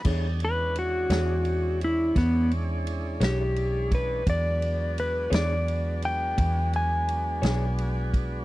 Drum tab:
CC |x-----------|------------|
RD |-xxxxxxxxxxx|xxxxxxxxxxxx|
SD |---o--o--o--|---o-----o--|
BD |o-----o----o|o-----o----o|